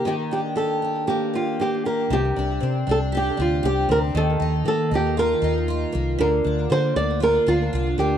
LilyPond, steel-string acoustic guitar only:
\new Staff \with { instrumentName = "Steel-string acoustic guitar" } { \time 4/4 \key ees \lydian \tempo 4 = 118 <ees g'>8 d'8 g'8 d'8 bes8 g'8 bes8 g'8 | c8 d'8 c'8 d'8 g'8 d'8 g'8 c'8 | ees8 ees'8 bes8 ees'8 f'8 ees'8 f'8 bes8 | d8 d'8 bes8 d'8 f'8 d'8 f'8 bes8 | }